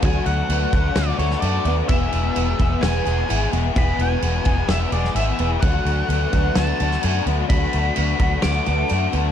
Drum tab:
CC |x-x-x-x-x-x-x-x-|x-x-x-x-x-x-x-x-|x-x-x-x-x-x-x-x-|x-x-x-x-x-x-x-x-|
SD |--------o--o----|--------o-------|--------o--o----|--------o--o----|
BD |o-----o---------|o-----o---------|o-----o---------|o-----o---------|

CC |x-x-x-x-x-x-x-x-|
SD |--------o-------|
BD |o-----o---------|